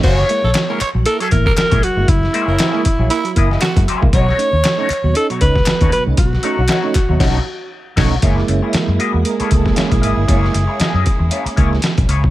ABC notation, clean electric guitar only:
X:1
M:4/4
L:1/16
Q:"Swing 16ths" 1/4=117
K:F#mix
V:1 name="Clean electric guitar"
[A,EGc]2 z3 [A,EGc] z3 [A,EGc] z3 [A,EGc] z2 | z2 [A,EGc]2 [A,EGc]2 z [A,EGc] z2 [A,EGd] [A,EGd] z2 [A,EGc]2 | [=A,DFc]2 z3 [A,DFc] z3 [A,DFc] z3 [A,DFc] z2 | z2 [=A,DFc] z [A,DFc] z2 [A,DFc] [A,DFc]2 z4 [A,DFc]2 |
[A,EGc] z2 [A,EGc] z2 [A,EGd] z2 [A,EGc] z2 [A,EGc] z [A,EGd] z | [A,EGc] z2 [A,EGc] [A,EGd]2 z2 [A,EGc] z [A,EGc] z3 [A,EGc] z |]